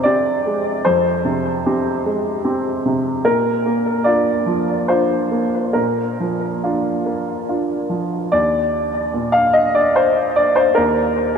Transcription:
upright piano
Already playing: F2 C3 G#3 C4 G4 G#4 C5 D5
0.03 C4 G4 D5
0.46 G#3
0.85 F2 C5
1.25 C3
1.66 C4 G4
2.06 G#3
2.45 C4 G4
2.86 C3
3.25 A#2 A#4
3.65 A#3
4.04 D4 F4 D5
4.46 F3
4.88 D4 F4 C5
5.32 A#3
5.73 A#2 A#4
6.20 F3
6.64 D4 F4
7.06 A#3
7.48 D4 F4
7.90 F3
8.32 D#2 D5
9.14 A#2
9.32 F5
9.53 D#5
9.75 D5
9.96 C5
10.36 D5
10.56 C5
10.75 D#2 A#4

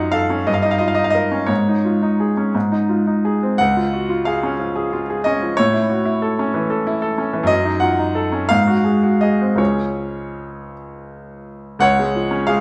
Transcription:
grand piano
Already playing: F#2 D#4 F4 F#5
0.12 A4 F5
0.30 C#4
0.47 G2 D#5
0.54 F5
0.62 D#4 D#5
0.71 F5
0.78 F4 D#5
0.88 F5
0.95 D#5
0.99 D#4
1.04 F5
1.10 D#5
1.15 A#4
1.32 C#4
1.47 G#2 C#5
1.68 D#4
1.85 F4
2.02 D#4
2.20 G#4
2.37 C#4
2.55 G#2
2.72 D#4
2.89 F4
3.07 D#4
3.25 G#4
3.43 C4
3.58 C#2 F#5
3.77 F4
3.93 F#4
4.09 F4
4.25 G#4 F5
4.43 C#4
4.60 F3
4.75 G#4
4.93 F4
5.10 G#4
5.24 C#4 D#5
5.42 F3
5.57 A2 C#5
5.73 E4
5.90 F#4
6.05 E4
6.22 A4
6.39 C#4
6.54 E3
6.70 A4
6.87 E4
7.02 A4
7.18 C#4
7.33 E3
7.43 F#2 D#5
7.65 D#4
7.80 F4 F#5
7.99 D#4
8.15 A4
8.32 C#4
8.49 G#2 F5
8.67 F#4
8.84 G#4
9.03 F#4
9.21 G#4 D#5
9.41 C4
9.55 C#2 F3 C#4 G#4 C#5
11.79 C#2 C#5 F#5
11.99 G#3
12.15 F3
12.31 C#4
12.47 G#3 G#4 F5

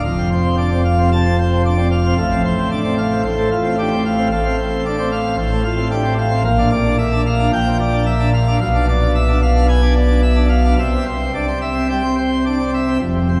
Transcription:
pipe organ
0.04 F1 F2 F5
0.18 C4
0.32 C5
0.45 C4
0.58 D4 D5
0.71 C4
0.85 F5
0.99 C4
1.12 C3 A5
1.25 C4
1.39 C5
1.52 C4
1.66 D4 D5
1.78 C4
1.91 F5
2.06 C4
2.18 A1 A2 F5
2.31 C4
2.45 C5
2.58 C4
2.71 D4 D5
2.85 C4
2.98 F5
3.11 C4
3.25 A1 A2 C5
3.38 A3
3.52 F4
3.64 C4
3.78 D4 G4
3.92 C4
4.05 F5
4.18 C4
4.32 A1 A2 F5
4.45 C4
4.58 C5
4.72 C4
4.86 D4 D5
4.99 C4
5.12 F5
5.25 C4
5.38 A1 A2 C5
5.52 A3
5.64 F4
5.78 C4
5.91 D4 G4
6.05 C4
6.18 F5
6.31 C4
6.44 A#1 A#2 F5
6.59 D4
6.71 D5
6.85 D4
6.98 E5
7.12 D4
7.26 F5
7.40 D4
7.53 A#1 A#2 G5
7.66 F3
7.80 D5
7.93 D4
8.06 E5
8.20 D4
8.34 F5
8.48 D4
8.61 B1 B2 F5
8.75 D4
8.89 D5
9.02 D4
9.15 E5
9.29 D4
9.42 F5
9.56 D4
9.69 B3 G#5
9.82 D4
9.96 D5
10.08 D4
10.23 E5
10.36 D4
10.49 F5
10.65 D4
10.79 C2 C3 E5
10.93 C4
11.06 C5
11.21 C4
11.34 D4 D5
11.47 C4
11.61 E5
11.76 C4
11.89 G3 G5
12.04 C4
12.18 C5
12.32 C4
12.46 D4 D5
12.59 C4
12.74 E5
12.88 C4
13.01 F1 F2
13.15 C3
13.29 C4

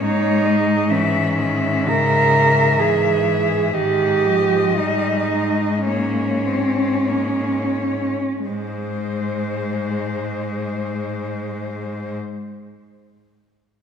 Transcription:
cello
0.03 G#2 G#3 D#4 C#5
0.46 D#5
0.90 E3 C#4 E5
1.38 D#3 E5
1.87 C#3 A#4
2.79 E3 G#4
3.74 G#2 D#3 G4 D#5
4.25 F3
4.77 G3 D#4
5.31 G#3
5.86 A#3 C#4 C#5
6.46 C4
7.09 A#3 C#5
8.47 G#2 G#3 C5

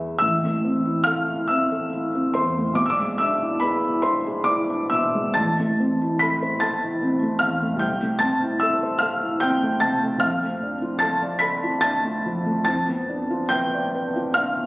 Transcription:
felt piano
Already playing: E2 B3 G#4 B4 E5
0.19 A1 E5 E6
0.44 A3
0.65 C4
0.85 E4
1.04 A4 F5 F6
1.28 E4
1.48 C4 E5 E6
1.72 A4
1.93 E4
2.15 C4
2.34 E2 C5 C6
2.58 A3
2.73 B1 D6
2.86 E6
2.90 D5 D6
3.00 G#3
3.18 D4 E5 E6
3.42 E4
3.60 G#4 B4 B5
3.84 E4
4.02 D4 C5 C6
4.26 G#4
4.44 E4 D5 D6
4.70 D4
4.90 B2 E5 E6
5.15 G#3
5.34 A1 A5 A6
5.59 A3
5.80 C4
6.01 E4
6.19 A4 B5 B6
6.42 C5
6.60 A4 A5 A6
6.83 E4
7.02 C4
7.23 A3
7.39 E2 F5 F6
7.62 A3
7.76 C2 G5 G6
8.02 A3
8.19 C4 A5 A6
8.42 E4
8.60 A4 E5 E6
8.83 C5
8.99 A4 F5 F6
9.22 E4
9.40 C4 G5 G6
9.63 A3
9.80 C3 A5 A6
10.03 A3
10.18 F2 F5 F6
10.43 A3
10.63 D4
10.82 F4
10.99 A4 A5 A6
11.22 D5
11.39 A4 B5 B6
11.64 F4
11.81 D4 A5 A6
12.04 A3
12.26 F3
12.46 A3
12.65 F2 A5 A6
12.88 B3
13.09 D4
13.31 F4
13.49 B4 G5 G6
13.73 D5
13.95 B4
14.16 F4
14.34 D4 F5 F6
14.58 B3

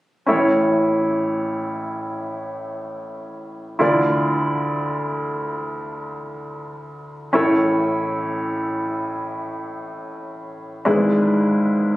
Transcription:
grand piano
0.26 A1 A2 C#4 E4 A4 C#5
3.79 D2 D3 E4 F4 A4 D5
7.33 A1 A2 C#4 E4 A4 C#5
10.85 G#1 G#2 D4 E4 G#4 B4

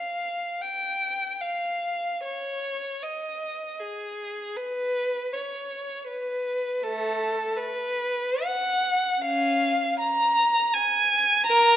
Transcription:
violin
Already playing: F5
0.62 G5
1.41 F5
2.24 C#5
3.03 D#5
3.80 G#4
4.57 B4
5.33 C#5
6.07 B4
6.82 A3 A4
7.57 B4
8.45 F#5
9.21 C#4 F5
10.00 A#5
10.74 G#5
11.47 A#4 A#5

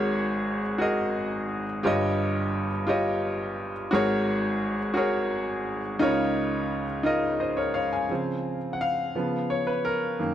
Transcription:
grand piano
Already playing: G#1 G#2 F#4 G#4 A#4 C#5
0.78 F#4 G#4 A#4 D#5
1.83 G1 G2 F4 G4 C#5 D#5
2.87 F4 G4 C#5 D#5
3.91 G#1 G#2 F#4 G#4 A#4 C#5
4.94 F#4 G#4 A#4 C#5
5.99 C#2 C#3 D#4 F4 A#4 C#5
7.03 D#4 F4 A#4 D#5
7.40 C5 D#5
7.57 A#4 C#5
7.74 C#5 F5
7.93 F5 G#5
8.09 C#3 F3 C4
8.73 F#5
8.81 F5
9.15 C#3 F3 B3
9.50 C#5
9.67 B4
9.85 A#4
10.19 F#2 D#3 A#3

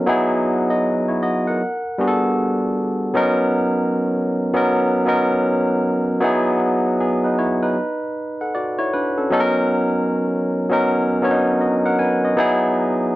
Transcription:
tine electric piano
0.06 F#3 B3 D#4 E4 G#4
0.70 F#4 D#5
1.08 E4 C#5
1.23 F#4 D#5
1.47 A#4 F#5
1.98 G3 B3 D4 F#4 G#4
2.08 A4
3.14 F#3 B3 C#4 D#4 A#4
4.53 F#3 B3 C#4 D#4 A#4
5.06 F#3 B3 C#4 D#4 A#4
6.21 F#3 B3 D#4 E4 G#4
7.00 B3 G#4
7.24 D#4 B4
7.39 E4 C#5
7.63 D#4 B4
8.41 A4 F#5
8.55 F#4 D5
8.79 E4 C#5
8.94 D4 B4
9.18 C#4 A4
9.30 F#3 B3 C#4 D#4 A4
9.40 A#4
10.69 F#3 B3 C#4 D#4 A#4
11.22 F#3 B3 C#4 D4 C#5
11.31 D#4
11.61 F#4 D#5
11.86 A#4 F#5
11.99 B4 G#5
12.25 F#4 D#5
12.36 F#3 B3 D#4 E4 G#4

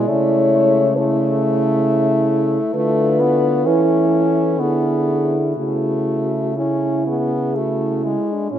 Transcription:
french horn
Already playing: G#3
0.08 C#3 A3 E4 C#5
0.97 A3 E4 A4
2.74 D3 A3 F4 B4
3.20 B3
3.66 E3 C#4 E4 A4
4.60 D3 B3 E4 G#4
5.56 C#3 A3 E4 F#4
6.57 C#4 E4
7.07 B3 G#4
7.55 A3 F#4
8.05 G#3 E4
8.32 D4
8.52 A2 C#4 E4

